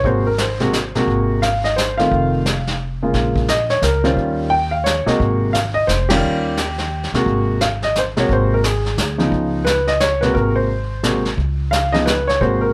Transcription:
0.04 1.03 G#1 medium
0.04 0.24 C3 medium
0.04 0.24 G#3 medium
0.04 0.24 A#3 medium
0.04 0.24 F#4 medium
0.04 0.25 C5 medium
0.04 brush sweep soft
0.04 kick soft
0.27 0.40 A#4 medium
0.38 0.92 C5 medium
0.38 snare medium
0.38 hi-hat pedal medium
0.60 0.72 C3 medium
0.60 0.72 G#3 medium
0.60 0.72 A#3 medium
0.60 0.73 F#4 medium
0.60 snare soft
0.73 snare medium
0.73 hi-hat pedal medium
0.95 1.40 C3 medium
0.95 1.40 G#3 medium
0.95 1.40 A#3 medium
0.95 1.41 F#4 medium
0.95 snare soft
1.07 2.07 G#1 medium
1.07 brush sweep soft
1.07 kick soft
1.42 1.64 F5 medium
1.42 snare medium
1.42 hi-hat pedal soft
1.64 1.77 D#5 medium
1.64 snare soft
1.76 1.99 C5 medium
1.76 snare medium
1.76 hi-hat pedal medium
1.98 2.43 D#3 medium
1.98 2.44 A3 medium
1.98 2.44 C4 medium
1.98 2.44 F4 medium
1.98 2.75 F5 medium
1.98 snare soft
2.12 3.10 F1 medium
2.12 brush sweep soft
2.12 kick soft
2.46 snare medium
2.46 hi-hat pedal medium
2.67 snare soft
3.02 3.47 C#3 medium
3.02 3.47 G#3 medium
3.02 3.47 A#3 medium
3.02 3.47 F4 medium
3.14 3.79 A#1 medium
3.14 brush sweep soft
3.14 kick soft
3.14 snare soft
3.36 kick soft
3.48 3.71 D#5 medium
3.48 snare medium
3.48 hi-hat pedal soft
3.70 3.82 C#5 medium
3.70 snare soft
3.82 4.14 C#2 medium
3.82 4.05 A#4 medium
3.82 snare medium
3.82 hi-hat pedal medium
4.04 4.49 D#3 medium
4.04 4.49 G3 medium
4.04 4.49 C#4 medium
4.04 4.49 F4 medium
4.04 4.17 C5 medium
4.04 snare soft
4.16 5.03 D#2 medium
4.16 brush sweep soft
4.16 kick soft
4.50 4.73 G5 medium
4.71 4.85 F5 medium
4.84 5.07 C#5 medium
4.84 snare medium
4.84 hi-hat pedal medium
5.06 5.51 C3 medium
5.06 5.52 G#3 medium
5.06 5.52 A#3 medium
5.06 5.52 F#4 medium
5.06 5.19 D#5 medium
5.06 muted upright bass stroke soft
5.06 snare soft
5.20 5.85 G#1 medium
5.20 brush sweep soft
5.20 kick soft
5.53 5.58 F5 medium
5.53 snare medium
5.53 hi-hat pedal soft
5.74 5.88 D#5 medium
5.87 6.20 F1 medium
5.87 6.08 C5 medium
5.87 snare medium
5.87 hi-hat pedal medium
6.09 6.55 D#3 medium
6.09 6.55 G3 medium
6.09 6.55 C#4 medium
6.09 6.55 F4 medium
6.09 7.08 G4 medium
6.09 snare medium
6.09 ride medium
6.23 7.09 D#2 medium
6.23 brush sweep soft
6.57 snare soft
6.57 hi-hat pedal medium
6.78 snare soft
7.03 snare soft
7.12 7.25 D#2 medium
7.12 7.58 C3 medium
7.12 7.58 G#3 medium
7.12 7.59 A#3 medium
7.12 7.59 F#4 medium
7.12 snare soft
7.26 8.25 G#1 medium
7.26 brush sweep soft
7.26 kick soft
7.61 7.66 F5 medium
7.61 snare medium
7.61 hi-hat pedal medium
7.82 7.96 D#5 medium
7.82 snare soft
7.96 8.03 C5 medium
7.96 snare medium
7.96 hi-hat pedal medium
8.17 8.61 C3 medium
8.17 8.61 G#3 medium
8.17 8.61 A#3 medium
8.17 8.61 F#4 medium
8.17 8.30 C#5 medium
8.17 snare soft
8.29 8.94 G#1 medium
8.29 8.53 C5 medium
8.29 brush sweep soft
8.29 kick soft
8.54 8.59 A#4 medium
8.64 9.16 G#4 medium
8.64 snare medium
8.64 hi-hat pedal medium
8.86 snare soft
8.97 9.29 D2 medium
8.97 snare medium
8.97 hi-hat pedal soft
9.18 9.63 C#3 medium
9.18 9.63 F3 medium
9.18 9.63 B3 medium
9.18 9.64 D#4 medium
9.18 snare soft
9.32 10.31 C#2 medium
9.32 brush sweep soft
9.32 kick soft
9.65 9.85 B4 medium
9.65 snare medium
9.65 hi-hat pedal medium
9.87 10.01 D#5 medium
9.87 snare soft
10.00 10.20 C#5 medium
10.00 snare medium
10.00 hi-hat pedal medium
10.21 10.67 C3 medium
10.21 10.67 G#3 medium
10.21 10.67 A#3 medium
10.21 10.67 F#4 medium
10.21 10.35 B4 medium
10.21 snare soft
10.34 11.34 G#1 medium
10.34 10.56 A#4 medium
10.34 brush sweep medium
10.34 kick soft
10.56 11.21 C5 medium
11.03 11.23 C3 medium
11.03 11.23 G#3 medium
11.03 11.23 A#3 soft
11.03 11.23 F#4 medium
11.03 snare medium
11.03 hi-hat pedal medium
11.25 snare soft
11.37 12.37 C#2 medium
11.37 brush sweep medium
11.37 kick soft
11.71 11.94 F5 medium
11.71 snare medium
11.71 hi-hat pedal medium
11.92 12.05 C#3 medium
11.92 12.05 F3 medium
11.92 12.05 B3 medium
11.92 12.05 D#4 medium
11.92 12.05 D#5 medium
11.92 snare soft
12.06 12.26 B4 medium
12.06 snare medium
12.06 hi-hat pedal medium
12.27 12.41 C#5 medium
12.27 snare soft
12.41 12.73 G#1 medium
12.41 12.73 C3 medium
12.41 12.73 G#3 medium
12.41 12.73 A#3 medium
12.41 12.73 F#4 medium
12.41 12.63 C5 medium
12.41 brush sweep soft
12.41 kick soft
12.61 12.73 A#4 medium

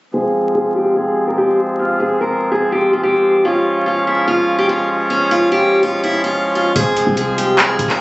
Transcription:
0.14 6.72 F3 medium
0.14 3.41 G#3 medium
0.14 3.41 C4 medium
0.14 0.53 G#4 loud
0.55 0.74 G#4 medium
0.76 0.95 G4 medium
0.96 1.26 G#4 medium
1.27 1.37 A#4 medium
1.38 1.57 G4 medium
1.79 1.98 F4 medium
2.00 2.19 G#4 medium
2.21 2.50 A#4 medium
2.52 2.70 G#4 medium
2.72 2.91 G4 medium
2.93 3.03 F4 medium
3.03 3.42 G4 medium
3.45 6.72 G#3 medium
3.45 6.72 C#4 medium
3.45 3.84 F4 loud
3.86 4.05 F4 medium
4.07 4.26 E4 medium
4.28 4.57 F4 medium
4.58 4.68 G4 medium
4.69 4.88 F4 medium
5.10 5.29 C#4 medium
5.31 5.50 F4 medium
5.52 5.81 G4 medium
5.83 6.02 F4 medium
6.03 6.22 E4 medium
6.24 6.53 F4 medium
6.55 6.74 F4 medium
6.76 7.06 F1 loud
6.76 8.01 F3 medium
6.76 8.01 G#3 medium
6.76 8.01 C4 medium
6.76 7.15 G#4 loud
6.76 kick loud
6.76 closed hi-hat medium
6.97 closed hi-hat medium
7.07 7.76 C2 loud
7.07 kick loud
7.17 7.36 G#4 medium
7.17 closed hi-hat medium
7.38 7.57 G4 medium
7.38 closed hi-hat medium
7.58 7.88 G#4 medium
7.58 clap loud
7.58 closed hi-hat medium
7.79 8.01 F1 loud
7.79 kick loud
7.79 closed hi-hat medium
7.90 7.99 A#4 medium
7.90 clap medium

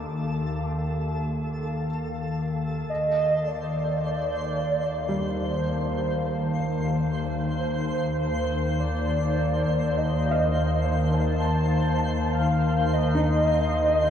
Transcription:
0.00 2.83 D#2 medium
0.00 14.10 D#3 medium
0.00 2.90 A#3 medium
0.00 1.89 D#4 medium
0.00 4.33 G4 medium
0.00 2.91 A4 medium
0.00 7.33 A4 medium
0.00 14.10 F5 medium
0.00 2.90 A5 medium
0.00 14.10 A5 medium
0.00 1.84 D6 medium
2.88 14.10 D#2 medium
2.88 14.10 C5 medium
2.88 3.48 D#5 loud
2.88 14.10 C6 medium
3.47 14.10 C5 medium
3.47 5.29 D5 loud
3.63 14.10 D#4 medium
5.09 8.91 G3 soft
5.27 7.03 C5 medium
7.60 8.81 C5 loud
8.80 9.99 D5 loud
9.97 10.86 D#5 loud
10.31 14.10 F5 soft
10.85 11.15 C5 medium
11.14 12.31 A5 loud
12.33 12.94 F5 loud
12.93 14.10 D#5 loud
13.15 14.10 D#4 medium

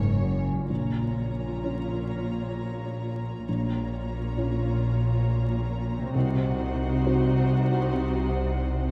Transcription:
0.00 0.44 F#1 medium
0.00 0.65 F#2 medium
0.00 0.74 F#2 medium
0.00 0.20 G#2 medium
0.00 0.73 C#3 soft
0.00 0.14 A#3 soft
0.00 0.30 C#4 soft
0.00 0.37 C#4 soft
0.00 0.65 A#4 soft
0.00 3.59 A#4 soft
0.00 0.45 C#5 medium
0.00 0.65 C#5 soft
0.05 0.65 C#5 soft
0.19 0.69 F#2 medium
0.38 0.56 C#4 soft
0.52 4.42 A#2 soft
0.57 4.47 C#4 soft
0.61 4.51 F4 soft
0.66 3.43 A#1 soft
0.66 1.61 A#1 soft
0.66 3.44 A#2 soft
0.66 3.43 A#3 soft
0.66 3.43 F4 soft
0.66 4.56 C#5 soft
0.66 3.43 C#5 soft
0.70 3.44 A#5 soft
1.64 3.44 C#4 soft
1.64 3.43 F4 soft
1.64 3.44 C#5 soft
3.46 6.10 A#1 soft
3.46 4.35 A#1 soft
3.46 6.11 A#2 soft
3.46 6.11 A#3 soft
3.46 6.11 F4 soft
3.46 6.11 C#5 soft
3.46 6.11 A#5 soft
4.38 6.11 C#4 soft
4.38 6.11 F4 soft
4.38 6.11 C#5 soft
5.97 8.91 C3 soft
6.01 8.91 C4 soft
6.06 8.91 F#4 soft
6.10 8.91 C2 medium
6.10 8.91 C3 medium
6.10 8.91 C5 soft
6.10 8.91 D#5 soft
6.10 8.91 F#5 medium
6.15 7.03 C2 soft
6.15 8.91 D#4 medium
6.15 8.91 F#4 medium
7.06 8.91 D#4 soft
7.06 8.91 F#4 soft
7.06 8.91 C5 soft

